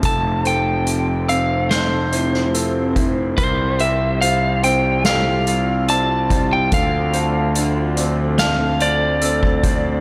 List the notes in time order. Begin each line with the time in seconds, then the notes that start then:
Already playing: F3 A3 C4 A4
0.03 F1 F3 A4 A5, kick, closed hi-hat
0.44 A4 C5 G5, closed hi-hat
0.87 closed hi-hat
1.28 C4 F5 E6, closed hi-hat
1.71 A4 C5, snare, closed hi-hat
2.12 E4 C5, closed hi-hat
2.34 snare
2.54 C4 A4, closed hi-hat
2.96 E4 C5, kick, closed hi-hat
3.37 C2 C3 G3 F4 A#4 C5, kick, closed hi-hat
3.79 G4 E5, closed hi-hat
4.21 F4 C5 F5, closed hi-hat
4.63 C4 C5 G5, closed hi-hat
5.05 G4 A4 F5, snare, closed hi-hat
5.47 F4, closed hi-hat
5.88 C4 D5 A5, closed hi-hat
6.30 F4 C5, kick, closed hi-hat
6.53 G5
6.72 D2 D3 F3 A3 A4 F5, kick, closed hi-hat
7.13 A4 C5, closed hi-hat
7.55 D4, closed hi-hat
7.97 C4 D5, closed hi-hat
8.38 A4 F5, snare, closed hi-hat
8.80 D4 C5 D5, closed hi-hat
9.22 C4 A4, closed hi-hat
9.43 kick
9.63 D4 C5, kick, closed hi-hat